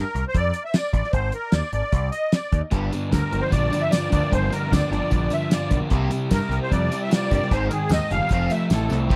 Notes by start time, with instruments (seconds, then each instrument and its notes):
0.00 accordion A#4
0.15 picked electric bass C2, closed hi-hat
0.28 accordion C5
0.34 picked electric bass F2, accordion D5, kick, closed hi-hat
0.54 closed hi-hat
0.65 accordion E5
0.74 accordion D5, snare, closed hi-hat, tambourine
0.93 picked electric bass A1, accordion D5, kick, closed hi-hat
1.04 snare
1.12 picked electric bass G#1, accordion C5, kick, closed hi-hat
1.32 accordion A#4, closed hi-hat
1.52 picked electric bass D#2, accordion D5, snare, closed hi-hat, tambourine
1.73 picked electric bass G#1, accordion D5, closed hi-hat
1.92 picked electric bass C2, kick, closed hi-hat
2.11 accordion D#5, closed hi-hat
2.32 accordion D5, snare, closed hi-hat, tambourine
2.52 picked electric bass D#2, kick, closed hi-hat
2.71 picked electric bass G1, overdriven electric guitar G2 D3 G3, kick, closed hi-hat
2.92 overdriven electric guitar G2 D3, closed hi-hat, tambourine
3.12 picked electric bass D2, overdriven electric guitar G2 D3, accordion A#4, kick, snare, closed hi-hat, tambourine
3.31 picked electric bass G1, overdriven electric guitar G2 D3 F3, closed hi-hat, tambourine
3.41 accordion C5
3.51 picked electric bass A#1, overdriven electric guitar G2 D3, accordion D5, kick, closed hi-hat, tambourine
3.71 overdriven electric guitar G2 D3 F3, closed hi-hat, tambourine
3.81 accordion E5
3.91 overdriven electric guitar G2 D3 F4, accordion D5, snare, closed hi-hat, tambourine
4.10 picked electric bass D2, overdriven electric guitar G2 D3 A#3, accordion D5, kick, closed hi-hat, tambourine
4.31 picked electric bass G1, overdriven electric guitar G2 D3, accordion C5, kick, closed hi-hat
4.50 overdriven electric guitar G2 D3, accordion A#4, closed hi-hat, tambourine
4.71 picked electric bass D2, overdriven electric guitar G2 D3, accordion D5, kick, snare, closed hi-hat, tambourine
4.91 picked electric bass G1, overdriven electric guitar G2 D3 F3, accordion D5, closed hi-hat, tambourine
5.10 picked electric bass A#1, overdriven electric guitar G2 D3, kick, closed hi-hat, tambourine
5.30 overdriven electric guitar G2 D3 F3, accordion E5, closed hi-hat, tambourine
5.50 overdriven electric guitar G2 D3 F4, accordion D5, snare, closed hi-hat, tambourine
5.70 picked electric bass B1, overdriven electric guitar G2 D3 A#3, kick, closed hi-hat, tambourine
5.90 picked electric bass C2, overdriven electric guitar C3 G3 A#3, kick, closed hi-hat
6.11 overdriven electric guitar C3 G3, closed hi-hat, tambourine
6.31 picked electric bass G2, overdriven electric guitar C3 G3, accordion A#4, kick, snare, closed hi-hat, tambourine
6.49 picked electric bass C2, overdriven electric guitar C3 G3, closed hi-hat, tambourine
6.63 accordion C5
6.71 picked electric bass F2, overdriven electric guitar C3 G3, accordion D5, kick, closed hi-hat, tambourine
6.92 overdriven electric guitar C3 G3, closed hi-hat, tambourine
7.03 accordion E5
7.09 overdriven electric guitar C3 G3 F4, closed hi-hat, tambourine
7.13 accordion D5, snare
7.30 picked electric bass G2, overdriven electric guitar C3 G3 A#3, accordion D5, kick, closed hi-hat, tambourine
7.42 snare
7.51 picked electric bass G#1, overdriven electric guitar G#2 D#3 G#3, accordion C5, kick, closed hi-hat, tambourine
7.68 overdriven electric guitar G#2, accordion G#4 A#4, closed hi-hat, tambourine
7.72 overdriven electric guitar D#3
7.89 picked electric bass D#2, overdriven electric guitar G#2, closed hi-hat, tambourine
7.91 overdriven electric guitar D#3, accordion D#5, snare, tambourine
8.10 picked electric bass F#1, overdriven electric guitar G#2 D#3 G3, accordion F5, closed hi-hat, tambourine
8.29 picked electric bass F1, overdriven electric guitar F3 A3, kick, closed hi-hat, tambourine
8.33 overdriven electric guitar C4
8.50 overdriven electric guitar F3 A3, accordion E5, closed hi-hat, tambourine
8.70 picked electric bass A1, overdriven electric guitar F3 A3 E4, accordion A4, snare, closed hi-hat, tambourine
8.90 picked electric bass C2, overdriven electric guitar F3 A3 C4, snare, tambourine
9.09 picked electric bass C2, overdriven electric guitar C3 F3 C4 F4 G4, accordion C5, kick, crash